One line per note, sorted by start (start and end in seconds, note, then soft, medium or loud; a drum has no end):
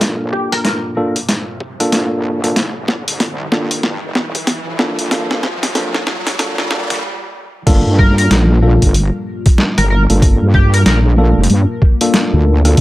0.00 0.31 A#1 loud
0.00 6.99 G3 medium
0.00 0.94 A#3 medium
0.00 6.99 A#3 medium
0.00 0.94 D4 medium
0.00 0.94 F4 medium
0.00 6.99 F4 medium
0.00 0.94 A4 medium
0.00 kick loud
0.00 snare medium
0.00 closed hi-hat medium
0.00 riser medium
0.32 0.48 G4 medium
0.32 kick loud
0.52 0.60 A#4 medium
0.52 cross-stick medium
0.52 closed hi-hat medium
0.64 0.77 A#4 medium
0.64 snare medium
0.64 closed hi-hat medium
0.97 1.18 A#3 medium
0.97 1.18 D4 medium
0.97 1.18 F4 medium
0.97 1.18 A4 medium
1.16 kick medium
1.16 closed hi-hat medium
1.29 snare medium
1.29 closed hi-hat medium
1.60 kick loud
1.80 2.39 A#3 medium
1.80 2.39 D4 medium
1.80 2.39 F4 medium
1.80 2.39 A4 loud
1.80 cross-stick soft
1.80 closed hi-hat medium
1.92 2.54 C2 medium
1.92 snare medium
1.92 closed hi-hat medium
2.44 2.56 A#3 medium
2.44 2.56 D4 medium
2.44 2.56 F4 medium
2.44 2.56 A4 medium
2.44 closed hi-hat medium
2.56 3.05 G1 medium
2.56 kick loud
2.56 snare medium
2.56 closed hi-hat medium
2.88 kick loud
2.88 snare medium
3.07 3.50 C2 loud
3.07 closed hi-hat medium
3.20 snare medium
3.20 closed hi-hat medium
3.52 4.00 G2 medium
3.52 3.82 A#3 medium
3.52 3.82 D4 medium
3.52 3.82 F4 medium
3.52 3.82 A4 medium
3.52 snare medium
3.71 kick medium
3.71 closed hi-hat medium
3.83 snare medium
4.03 4.32 F1 loud
4.15 snare medium
4.35 kick loud
4.35 closed hi-hat medium
4.47 snare medium
4.47 closed hi-hat medium
4.67 4.96 G1 loud
4.79 5.09 A#3 medium
4.79 5.09 D4 medium
4.79 5.09 F4 medium
4.79 5.09 A4 medium
4.79 snare medium
4.99 5.41 A#1 loud
4.99 closed hi-hat medium
5.11 5.41 A#3 medium
5.11 5.41 D4 medium
5.11 5.41 F4 medium
5.11 5.41 A4 medium
5.11 kick loud
5.11 snare loud
5.11 closed hi-hat medium
5.31 snare medium
5.43 6.05 G1 loud
5.43 kick loud
5.43 snare medium
5.63 snare medium
5.63 closed hi-hat medium
5.75 6.05 A#3 medium
5.75 6.05 D4 medium
5.75 6.05 F4 medium
5.75 6.05 A4 medium
5.75 snare loud
5.75 closed hi-hat medium
5.94 snare medium
6.07 snare loud
6.26 kick medium
6.26 snare medium
6.26 closed hi-hat medium
6.39 6.69 A#3 medium
6.39 6.69 D4 medium
6.39 6.69 F4 medium
6.39 6.69 A4 medium
6.39 snare loud
6.39 closed hi-hat medium
6.58 snare medium
6.71 7.01 G1 loud
6.71 7.01 A#3 medium
6.71 7.01 D4 medium
6.71 7.01 F4 medium
6.71 7.01 A4 medium
6.71 kick loud
6.71 snare loud
6.90 snare loud
6.90 closed hi-hat medium
7.66 7.83 G1 medium
7.66 12.81 G3 medium
7.66 8.58 A#3 loud
7.66 12.81 A#3 medium
7.66 8.58 D4 medium
7.66 12.81 F4 medium
7.66 8.58 F4 medium
7.66 8.58 A4 loud
7.66 kick loud
7.66 closed hi-hat medium
7.66 crash loud
7.86 8.29 G2 loud
7.99 8.14 A#4 medium
7.99 kick loud
8.18 8.30 A#4 loud
8.18 closed hi-hat medium
8.31 8.79 A#1 medium
8.31 snare loud
8.31 closed hi-hat medium
8.63 8.93 A#3 medium
8.63 8.93 D4 medium
8.63 8.93 F4 medium
8.63 8.93 A4 medium
8.82 9.11 G1 loud
8.82 kick medium
8.82 closed hi-hat medium
8.94 closed hi-hat medium
9.46 kick loud
9.46 closed hi-hat medium
9.58 snare loud
9.78 10.07 G1 loud
9.78 9.86 A#4 medium
9.78 cross-stick medium
9.78 closed hi-hat medium
9.90 10.03 A#4 medium
10.10 10.39 G1 loud
10.10 11.15 A#3 medium
10.10 11.15 D4 medium
10.10 11.15 F4 medium
10.10 11.15 A4 medium
10.10 closed hi-hat medium
10.22 kick loud
10.22 closed hi-hat medium
10.42 10.84 G2 medium
10.54 10.70 G4 medium
10.54 kick loud
10.74 10.82 A#4 loud
10.74 closed hi-hat medium
10.86 11.34 A#1 loud
10.86 10.99 A#4 medium
10.86 snare loud
10.86 closed hi-hat medium
11.18 11.39 A#3 medium
11.18 11.39 D4 medium
11.18 11.39 F4 medium
11.18 11.39 A4 medium
11.38 11.48 F1 loud
11.44 closed hi-hat medium
11.50 11.66 G2 loud
11.50 closed hi-hat medium
11.82 kick loud
12.01 12.60 A#3 medium
12.01 12.61 D4 medium
12.01 12.60 F4 medium
12.01 12.60 A4 loud
12.01 closed hi-hat medium
12.14 snare loud
12.14 closed hi-hat medium
12.33 12.76 D2 loud
12.65 12.80 A#3 medium
12.65 12.80 D4 medium
12.65 12.80 F4 medium
12.65 12.80 A4 medium
12.65 cross-stick soft
12.65 closed hi-hat medium
12.77 12.81 G1 loud
12.77 kick loud
12.77 closed hi-hat medium